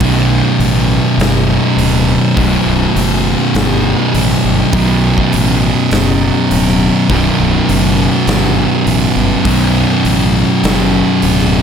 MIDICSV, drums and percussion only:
0, 0, Header, 1, 2, 480
1, 0, Start_track
1, 0, Tempo, 589971
1, 7, Time_signature, 4, 2, 24, 8
1, 9456, End_track
2, 0, Start_track
2, 0, Title_t, "Drums"
2, 2, Note_on_c, 9, 46, 61
2, 7, Note_on_c, 9, 36, 113
2, 84, Note_off_c, 9, 46, 0
2, 88, Note_off_c, 9, 36, 0
2, 489, Note_on_c, 9, 46, 52
2, 570, Note_off_c, 9, 46, 0
2, 973, Note_on_c, 9, 46, 56
2, 987, Note_on_c, 9, 38, 102
2, 1054, Note_off_c, 9, 46, 0
2, 1068, Note_off_c, 9, 38, 0
2, 1451, Note_on_c, 9, 46, 55
2, 1533, Note_off_c, 9, 46, 0
2, 1929, Note_on_c, 9, 36, 116
2, 1931, Note_on_c, 9, 46, 60
2, 2010, Note_off_c, 9, 36, 0
2, 2013, Note_off_c, 9, 46, 0
2, 2411, Note_on_c, 9, 46, 54
2, 2492, Note_off_c, 9, 46, 0
2, 2886, Note_on_c, 9, 46, 55
2, 2899, Note_on_c, 9, 38, 110
2, 2967, Note_off_c, 9, 46, 0
2, 2981, Note_off_c, 9, 38, 0
2, 3371, Note_on_c, 9, 46, 59
2, 3452, Note_off_c, 9, 46, 0
2, 3847, Note_on_c, 9, 46, 60
2, 3850, Note_on_c, 9, 36, 118
2, 3928, Note_off_c, 9, 46, 0
2, 3931, Note_off_c, 9, 36, 0
2, 4212, Note_on_c, 9, 36, 79
2, 4294, Note_off_c, 9, 36, 0
2, 4332, Note_on_c, 9, 46, 56
2, 4414, Note_off_c, 9, 46, 0
2, 4809, Note_on_c, 9, 46, 61
2, 4823, Note_on_c, 9, 38, 107
2, 4891, Note_off_c, 9, 46, 0
2, 4905, Note_off_c, 9, 38, 0
2, 5295, Note_on_c, 9, 46, 61
2, 5376, Note_off_c, 9, 46, 0
2, 5430, Note_on_c, 9, 38, 30
2, 5511, Note_off_c, 9, 38, 0
2, 5774, Note_on_c, 9, 36, 116
2, 5774, Note_on_c, 9, 46, 58
2, 5855, Note_off_c, 9, 36, 0
2, 5856, Note_off_c, 9, 46, 0
2, 6257, Note_on_c, 9, 46, 58
2, 6338, Note_off_c, 9, 46, 0
2, 6732, Note_on_c, 9, 46, 53
2, 6745, Note_on_c, 9, 38, 98
2, 6813, Note_off_c, 9, 46, 0
2, 6827, Note_off_c, 9, 38, 0
2, 7214, Note_on_c, 9, 46, 57
2, 7295, Note_off_c, 9, 46, 0
2, 7690, Note_on_c, 9, 36, 109
2, 7692, Note_on_c, 9, 46, 65
2, 7772, Note_off_c, 9, 36, 0
2, 7773, Note_off_c, 9, 46, 0
2, 8175, Note_on_c, 9, 46, 59
2, 8256, Note_off_c, 9, 46, 0
2, 8653, Note_on_c, 9, 46, 56
2, 8667, Note_on_c, 9, 38, 114
2, 8735, Note_off_c, 9, 46, 0
2, 8749, Note_off_c, 9, 38, 0
2, 9130, Note_on_c, 9, 46, 59
2, 9211, Note_off_c, 9, 46, 0
2, 9264, Note_on_c, 9, 38, 32
2, 9346, Note_off_c, 9, 38, 0
2, 9456, End_track
0, 0, End_of_file